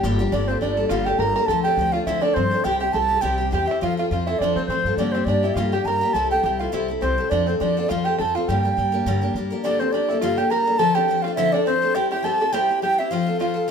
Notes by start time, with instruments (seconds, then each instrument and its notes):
Already playing: five-string banjo G4
0.03 upright bass G1, steel-string acoustic guitar G2 D3 G3 A#3 D4 G4
0.19 steel-string acoustic guitar G3 A#3 D4 G4
0.32 upright bass G1, steel-string acoustic guitar G2 D3 G3 A#3 D4 A4, five-string banjo D4, flute D5
0.48 steel-string acoustic guitar A#3 D4 A4, five-string banjo C4, flute C5
0.52 steel-string acoustic guitar G3
0.61 upright bass G1, steel-string acoustic guitar G3 A#3 D4 A4, five-string banjo D4, flute D5
0.77 steel-string acoustic guitar G3 A#3 D4 A4
0.89 upright bass G1, steel-string acoustic guitar G2 D3 G3 A#3 D4 A4, five-string banjo F4, flute F5
1.05 steel-string acoustic guitar A#3 D4 A4, five-string banjo G4, flute G5
1.09 steel-string acoustic guitar G3
1.19 upright bass G1, steel-string acoustic guitar G3 A#3 D4, five-string banjo A#4, flute A#5
1.23 steel-string acoustic guitar A4
1.36 steel-string acoustic guitar G3 A#3 D4 A4, five-string banjo A#4
1.46 upright bass D2, steel-string acoustic guitar D3, five-string banjo A4, flute A5
1.50 steel-string acoustic guitar F3 C4 D4 A4
1.63 five-string banjo G4, steel-string acoustic guitar A4, flute G5
1.67 steel-string acoustic guitar C4 D4
1.77 upright bass D2, steel-string acoustic guitar F3 C4 D4 A4
1.92 steel-string acoustic guitar D4 A4, five-string banjo F4, flute F5
1.97 steel-string acoustic guitar C4
2.06 upright bass D2, steel-string acoustic guitar D3 F3 C4 D4 A4, five-string banjo E4, flute E5
2.21 steel-string acoustic guitar C4 D4 A4, five-string banjo D4, flute D5
2.34 upright bass G2, steel-string acoustic guitar F3 C4 D4, five-string banjo C4, flute C5
2.39 steel-string acoustic guitar A4
2.51 steel-string acoustic guitar C4 D4 A4
2.64 upright bass C2, steel-string acoustic guitar C3 G3 C4 E4 G4, five-string banjo G4, flute G5
2.80 steel-string acoustic guitar C4 E4 G4, five-string banjo G4, flute G5
2.93 upright bass C2, steel-string acoustic guitar G3 C4 E4 G4, five-string banjo A4, flute A5
3.08 steel-string acoustic guitar C4 E4 G4
3.17 five-string banjo A4
3.21 upright bass C2, steel-string acoustic guitar C3 G3 C4 E4 G4, five-string banjo G4, flute G5
3.38 steel-string acoustic guitar C4 E4 G4
3.51 upright bass E2, steel-string acoustic guitar G3 C4 E4 G4, five-string banjo G4, flute G5
3.66 steel-string acoustic guitar C4 E4 G4, flute E5
3.71 five-string banjo E4
3.81 upright bass F2, steel-string acoustic guitar F3 C4 F4 A4, five-string banjo F4, flute F5
3.97 steel-string acoustic guitar C4 F4 A4, five-string banjo F4, flute F5
4.10 upright bass F2, steel-string acoustic guitar F3 C4 F4 A4, five-string banjo F4, flute F5
4.26 steel-string acoustic guitar C4 F4 A4, five-string banjo E4, flute E5
4.39 upright bass F2, steel-string acoustic guitar F3, five-string banjo D4, flute D5
4.43 steel-string acoustic guitar C4 F4 A4
4.55 upright bass C3, five-string banjo C4, steel-string acoustic guitar C4 F4 A4, flute C5
4.66 upright bass A2, five-string banjo C4, flute C5
4.70 steel-string acoustic guitar F3 C4 F4 A4
4.84 upright bass G2, steel-string acoustic guitar C4 F4 A4
4.97 upright bass G2, steel-string acoustic guitar G2 D3 G3 A#3 D4 G4, five-string banjo D4, flute D5
5.12 steel-string acoustic guitar A#3 D4 G4, five-string banjo C4, flute C5
5.16 steel-string acoustic guitar G3
5.25 upright bass G2, steel-string acoustic guitar G3 A#3, five-string banjo D4, flute D5
5.29 steel-string acoustic guitar D4 G4
5.43 steel-string acoustic guitar G3 A#3 D4 G4, five-string banjo E4
5.54 upright bass G2, steel-string acoustic guitar G2 D3 G3 A#3 D4 G4, five-string banjo F4, flute F5
5.72 steel-string acoustic guitar G3 A#3 D4 G4, five-string banjo G4, flute G5
5.84 upright bass G2, steel-string acoustic guitar G3 A#3 D4 G4, five-string banjo A#4, flute A#5
6.01 steel-string acoustic guitar G3 A#3 D4 G4
6.13 upright bass C2, steel-string acoustic guitar C3 G3 C4 E4 A4, five-string banjo A4, flute A5
6.31 steel-string acoustic guitar C4 E4 A4, five-string banjo G4, flute G5
6.43 upright bass C2, steel-string acoustic guitar G3 C4 E4 A4, five-string banjo G4
6.59 steel-string acoustic guitar C4 E4 A4, five-string banjo F4, flute F5
6.69 upright bass C2, steel-string acoustic guitar C3 G3 C4, flute F5
6.74 five-string banjo E4, steel-string acoustic guitar E4 A4
6.88 steel-string acoustic guitar C4 E4 A4
7.01 upright bass C2, steel-string acoustic guitar G3 C4 E4 A4, five-string banjo C4, flute C5
7.18 steel-string acoustic guitar C4 E4 A4
7.30 upright bass F2, steel-string acoustic guitar F3 C4 F4 A4, five-string banjo D4, flute D5
7.46 five-string banjo C4, steel-string acoustic guitar C4 F4 A4, flute C5
7.58 upright bass F2, steel-string acoustic guitar F3 C4 F4, five-string banjo D4, flute D5
7.63 steel-string acoustic guitar A4
7.77 steel-string acoustic guitar C4 F4 A4
7.89 upright bass F2, steel-string acoustic guitar F3 C4 F4 A4, five-string banjo F4, flute F5
8.05 steel-string acoustic guitar C4 F4 A4, five-string banjo G4, flute G5
8.18 upright bass F2, steel-string acoustic guitar F3 C4 F4 A4, five-string banjo A4, flute A5
8.35 steel-string acoustic guitar C4 F4 A4, five-string banjo F4, flute F5
8.48 upright bass G2, steel-string acoustic guitar G2 D3 G3 A#3 D4 A#4, five-string banjo G4, flute G5
8.63 steel-string acoustic guitar G3 A#3 D4 A#4
8.77 upright bass G2, steel-string acoustic guitar G3 A#3 D4 A#4
8.92 steel-string acoustic guitar G3 A#3 D4 A#4
9.06 upright bass G2, steel-string acoustic guitar G2 D3 G3 A#3 D4 A#4
9.22 steel-string acoustic guitar G3 A#3 D4 A#4
9.34 upright bass G2, steel-string acoustic guitar G3 A#3 D4
9.38 steel-string acoustic guitar A#4
9.50 steel-string acoustic guitar G3 A#3 D4 A#4
9.64 steel-string acoustic guitar G2 D3 G3 A#3 D4 A4, five-string banjo D4, flute D5
9.80 steel-string acoustic guitar G3 A#3 D4 A4, five-string banjo C4, flute C5
9.92 steel-string acoustic guitar G3 A#3 D4 A4, five-string banjo D4, flute D5
10.09 steel-string acoustic guitar G3 A#3 D4 A4, five-string banjo E4
10.21 steel-string acoustic guitar G2 D3 G3 A#3 D4 A4, five-string banjo F4, flute F5
10.36 steel-string acoustic guitar G3 A#3 D4 A4, five-string banjo G4, flute G5
10.50 steel-string acoustic guitar G3 A#3 D4 A4, five-string banjo A#4, flute A#5
10.66 steel-string acoustic guitar G3 A#3 D4 A4
10.78 steel-string acoustic guitar D3 F3 C4 D4 A4, five-string banjo A4, flute A5
10.95 steel-string acoustic guitar C4 D4 A4, five-string banjo G4, flute G5
11.08 steel-string acoustic guitar F3 C4 D4 A4
11.22 steel-string acoustic guitar D4 A4, five-string banjo F4, flute F5
11.28 steel-string acoustic guitar C4
11.35 steel-string acoustic guitar D3 F3 C4 D4, five-string banjo E4, flute E5
11.39 steel-string acoustic guitar A4
11.52 steel-string acoustic guitar C4 D4 A4, five-string banjo D4, flute D5
11.66 steel-string acoustic guitar F3 C4 D4 A4, five-string banjo C4, flute C5
11.82 steel-string acoustic guitar C4 D4 A4
11.95 steel-string acoustic guitar C3 G3 C4 E4 G4, five-string banjo G4, flute G5
12.11 steel-string acoustic guitar C4 E4 G4, five-string banjo G4, flute G5
12.23 steel-string acoustic guitar G3 C4 E4 G4, five-string banjo A4, flute A5
12.40 steel-string acoustic guitar C4 E4 G4, five-string banjo A4
12.53 steel-string acoustic guitar C3 G3 C4 E4 G4, five-string banjo G4, flute G5
12.69 steel-string acoustic guitar C4 E4 G4
12.82 steel-string acoustic guitar G3 C4 E4 G4, five-string banjo G4, flute G5
12.98 steel-string acoustic guitar C4 E4 G4, five-string banjo E4, flute E5
13.11 steel-string acoustic guitar F3 C4 F4 A4, five-string banjo F4, flute F5
13.26 steel-string acoustic guitar C4 F4 A4
13.39 steel-string acoustic guitar F3 C4 F4 A4, five-string banjo F4, flute F5
13.54 steel-string acoustic guitar C4 F4 A4